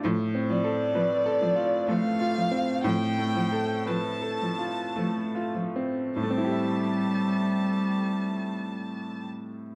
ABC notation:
X:1
M:3/4
L:1/8
Q:1/4=55
K:Am
V:1 name="Violin"
z d3 f2 | g2 a3 z | a6 |]
V:2 name="Upright piano"
(3A,, C A (3B A F (3A, F C | (3A,, A, A (3B A F (3A, F C | [A,,A,CEGe]6 |]
V:3 name="Cello" clef=bass
F, F, F, F, F, F, | F, F, F, F, F, F, | G,6 |]